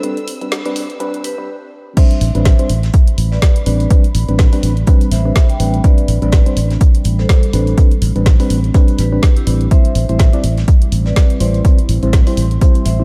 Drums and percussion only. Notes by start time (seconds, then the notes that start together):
0.03 closed hi-hat
0.17 closed hi-hat
0.28 open hi-hat
0.41 closed hi-hat
0.52 snare, closed hi-hat
0.65 closed hi-hat
0.76 open hi-hat
0.90 closed hi-hat
1.00 closed hi-hat
1.14 closed hi-hat
1.24 open hi-hat
1.97 kick, closed hi-hat, crash
2.11 closed hi-hat
2.21 closed hi-hat, open hi-hat
2.35 closed hi-hat
2.45 kick, snare, closed hi-hat
2.59 closed hi-hat
2.69 closed hi-hat, open hi-hat
2.83 snare, closed hi-hat
2.93 kick, closed hi-hat
3.08 closed hi-hat
3.18 closed hi-hat, open hi-hat
3.32 snare
3.42 kick, snare, closed hi-hat
3.56 closed hi-hat
3.66 closed hi-hat, open hi-hat
3.80 closed hi-hat
3.90 kick, closed hi-hat
4.04 closed hi-hat
4.15 closed hi-hat, open hi-hat
4.28 closed hi-hat
4.38 kick, snare, closed hi-hat
4.53 open hi-hat
4.63 closed hi-hat, open hi-hat
4.77 closed hi-hat
4.87 kick, closed hi-hat
5.01 closed hi-hat
5.12 snare, closed hi-hat, open hi-hat
5.35 kick, snare, closed hi-hat
5.49 closed hi-hat
5.60 closed hi-hat, open hi-hat
5.74 closed hi-hat
5.84 kick, closed hi-hat
5.98 closed hi-hat
6.08 closed hi-hat, open hi-hat
6.22 closed hi-hat
6.32 kick, snare, closed hi-hat
6.46 closed hi-hat
6.57 closed hi-hat, open hi-hat
6.71 snare, closed hi-hat
6.80 kick, closed hi-hat
6.95 closed hi-hat
7.04 closed hi-hat, open hi-hat
7.19 snare
7.29 kick, snare, closed hi-hat
7.43 closed hi-hat
7.53 closed hi-hat, open hi-hat
7.67 closed hi-hat
7.78 kick, closed hi-hat
7.91 closed hi-hat
8.02 closed hi-hat, open hi-hat
8.16 closed hi-hat
8.26 kick, snare, closed hi-hat
8.40 open hi-hat
8.50 closed hi-hat, open hi-hat
8.64 closed hi-hat
8.74 kick, snare, closed hi-hat
8.88 closed hi-hat
8.98 snare, closed hi-hat, open hi-hat
9.22 kick, snare, closed hi-hat
9.37 closed hi-hat
9.47 closed hi-hat, open hi-hat
9.61 closed hi-hat
9.71 kick, closed hi-hat
9.85 closed hi-hat
9.95 closed hi-hat, open hi-hat
10.09 closed hi-hat
10.19 kick, snare, closed hi-hat
10.33 closed hi-hat
10.44 closed hi-hat, open hi-hat
10.57 snare, closed hi-hat
10.68 kick, closed hi-hat
10.82 closed hi-hat
10.92 closed hi-hat, open hi-hat
11.06 snare
11.16 kick, snare, closed hi-hat
11.30 closed hi-hat
11.40 closed hi-hat, open hi-hat
11.54 closed hi-hat
11.65 kick, closed hi-hat
11.79 closed hi-hat
11.89 closed hi-hat, open hi-hat
12.03 closed hi-hat
12.13 kick, snare, closed hi-hat
12.27 open hi-hat
12.37 closed hi-hat, open hi-hat
12.51 closed hi-hat
12.61 kick, closed hi-hat
12.74 closed hi-hat
12.85 snare, closed hi-hat, open hi-hat